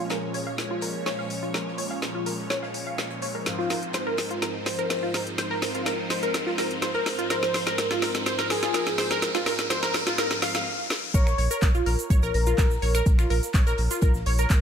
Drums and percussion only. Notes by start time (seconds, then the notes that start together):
0.09 snare, closed hi-hat
0.34 closed hi-hat, open hi-hat
0.58 snare, closed hi-hat
0.81 closed hi-hat, open hi-hat
1.06 snare, open hi-hat
1.19 snare
1.30 closed hi-hat, open hi-hat
1.43 closed hi-hat
1.54 snare, closed hi-hat
1.67 snare
1.78 closed hi-hat, open hi-hat
1.90 snare
2.02 snare, closed hi-hat
2.26 closed hi-hat, open hi-hat
2.38 snare
2.50 snare, closed hi-hat
2.63 snare
2.74 closed hi-hat, open hi-hat
2.98 snare, closed hi-hat
3.10 closed hi-hat
3.22 closed hi-hat, open hi-hat
3.46 snare, closed hi-hat
3.59 snare
3.70 snare, closed hi-hat, open hi-hat
3.83 closed hi-hat
3.93 snare, closed hi-hat
4.17 snare, closed hi-hat, open hi-hat
4.31 closed hi-hat
4.42 snare, closed hi-hat
4.66 snare, closed hi-hat, open hi-hat
4.79 closed hi-hat
4.90 snare, closed hi-hat, open hi-hat
5.03 snare
5.14 snare, closed hi-hat, open hi-hat
5.27 closed hi-hat
5.38 snare, closed hi-hat
5.51 snare
5.62 snare, closed hi-hat, open hi-hat
5.74 snare, closed hi-hat
5.86 snare, closed hi-hat
6.10 snare, closed hi-hat, open hi-hat
6.23 snare, closed hi-hat
6.34 snare, closed hi-hat
6.46 snare
6.58 snare, closed hi-hat, open hi-hat
6.71 closed hi-hat
6.82 snare, closed hi-hat
6.94 closed hi-hat
7.06 snare, closed hi-hat, open hi-hat
7.19 closed hi-hat
7.30 snare, closed hi-hat
7.42 snare
7.54 snare, closed hi-hat, open hi-hat
7.67 snare, closed hi-hat
7.78 snare, closed hi-hat
7.91 snare
8.02 snare, closed hi-hat, open hi-hat
8.15 snare, closed hi-hat
8.26 snare, closed hi-hat
8.39 snare
8.50 snare, closed hi-hat, open hi-hat
8.63 snare, closed hi-hat
8.74 snare, closed hi-hat, open hi-hat
8.87 snare
8.98 snare, closed hi-hat, open hi-hat
9.11 snare, closed hi-hat
9.22 snare, closed hi-hat
9.34 snare, closed hi-hat
9.46 snare, closed hi-hat, open hi-hat
9.59 snare, closed hi-hat
9.70 snare, closed hi-hat
9.83 snare
9.94 snare, closed hi-hat, open hi-hat
10.07 snare, closed hi-hat
10.18 snare, closed hi-hat
10.31 snare, closed hi-hat
10.42 snare, closed hi-hat, open hi-hat
10.55 snare, closed hi-hat
10.90 snare
11.14 kick, closed hi-hat, shaker
11.27 finger snap, snare, shaker
11.38 closed hi-hat, open hi-hat
11.51 closed hi-hat, shaker
11.62 kick, snare, clap, closed hi-hat, shaker
11.75 shaker
11.86 closed hi-hat, open hi-hat
11.99 closed hi-hat, shaker
12.10 kick, closed hi-hat, shaker
12.23 shaker
12.34 closed hi-hat, open hi-hat
12.46 closed hi-hat, shaker
12.58 kick, snare, clap, closed hi-hat, open hi-hat, shaker
12.71 snare, shaker
12.82 closed hi-hat, open hi-hat
12.95 finger snap, closed hi-hat, shaker
13.06 kick, closed hi-hat, shaker
13.18 finger snap, snare, shaker
13.30 closed hi-hat, open hi-hat
13.43 snare, closed hi-hat, shaker
13.54 kick, snare, clap, closed hi-hat, shaker
13.67 shaker
13.78 closed hi-hat, open hi-hat
13.91 snare, closed hi-hat, shaker
14.01 kick, closed hi-hat, shaker
14.14 snare, shaker
14.26 closed hi-hat, open hi-hat
14.38 closed hi-hat, shaker
14.50 kick, snare, clap, closed hi-hat, shaker